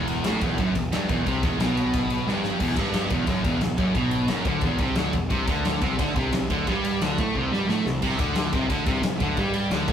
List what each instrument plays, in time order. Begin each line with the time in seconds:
Already playing: picked electric bass E1, distorted electric guitar E2
0.08 ride
0.24 picked electric bass A1, distorted electric guitar A2, snare, ride
0.41 picked electric bass E1, distorted electric guitar E2, kick, ride
0.58 picked electric bass F#1, distorted electric guitar F#2, kick, ride
0.75 picked electric bass E1, distorted electric guitar E2, kick, ride
0.91 picked electric bass G1, distorted electric guitar G2, snare, ride
1.08 picked electric bass E1, distorted electric guitar E2, kick, ride
1.25 picked electric bass C2, distorted electric guitar C3, kick, ride
1.42 picked electric bass E1, distorted electric guitar E2, kick, ride
1.59 picked electric bass B1, distorted electric guitar B2, snare, ride
1.77 ride
1.93 kick, ride
2.10 ride
2.26 picked electric bass G1, distorted electric guitar G2, snare
2.43 snare
2.59 picked electric bass E1, distorted electric guitar E2, kick, crash
2.76 picked electric bass G1, distorted electric guitar G2, kick, ride
2.94 snare, ride
3.10 picked electric bass E1, distorted electric guitar E2, kick, ride
3.27 picked electric bass F#1, distorted electric guitar F#2, kick, ride
3.44 picked electric bass E1, distorted electric guitar E2, kick, ride
3.59 picked electric bass E1, distorted electric guitar E2, snare, ride
3.78 picked electric bass F#1, distorted electric guitar F#2, kick, ride
3.94 picked electric bass B1, distorted electric guitar B2, kick, ride
4.11 ride
4.28 picked electric bass F#1, distorted electric guitar F#2, snare, ride
4.45 picked electric bass D2, distorted electric guitar D3, kick, ride
4.61 picked electric bass E1, distorted electric guitar E2, kick, ride
4.78 picked electric bass C2, distorted electric guitar C3, kick, ride
4.95 picked electric bass D2, distorted electric guitar D3, snare, ride
5.13 picked electric bass E1, distorted electric guitar E2, kick, ride
5.30 picked electric bass C2, distorted electric guitar C3, kick, ride
5.47 picked electric bass D2, distorted electric guitar D3, kick, ride
5.65 snare, ride
5.81 picked electric bass C2, distorted electric guitar C3, kick, ride
5.99 picked electric bass D2, distorted electric guitar D3, kick, ride
6.15 picked electric bass C2, distorted electric guitar C3, kick, ride
6.32 picked electric bass C2, distorted electric guitar C3, snare, ride
6.50 picked electric bass D2, distorted electric guitar D3, kick, ride
6.67 picked electric bass G2, distorted electric guitar G3, kick, ride
6.84 ride
7.00 picked electric bass D2, distorted electric guitar D3, snare, ride
7.18 picked electric bass A2, distorted electric guitar A3, kick, ride
7.34 picked electric bass C2, distorted electric guitar C3, kick
7.51 picked electric bass G2, distorted electric guitar G3, snare
7.67 picked electric bass A2, distorted electric guitar A3, snare
7.85 picked electric bass C2, distorted electric guitar C3, snare
8.02 picked electric bass C2, distorted electric guitar C3, kick, crash
8.19 picked electric bass D2, distorted electric guitar D3, kick, ride
8.35 snare, ride
8.53 picked electric bass C2, distorted electric guitar C3, kick, ride
8.70 picked electric bass D2, distorted electric guitar D3, kick, ride
8.86 picked electric bass C2, distorted electric guitar C3, kick, ride
9.02 picked electric bass C2, distorted electric guitar C3, snare, ride
9.20 picked electric bass D2, distorted electric guitar D3, kick, ride
9.37 picked electric bass G2, distorted electric guitar G3, kick, ride
9.54 ride
9.70 picked electric bass D2, distorted electric guitar D3, snare, ride
9.88 picked electric bass A2, distorted electric guitar A3, kick, ride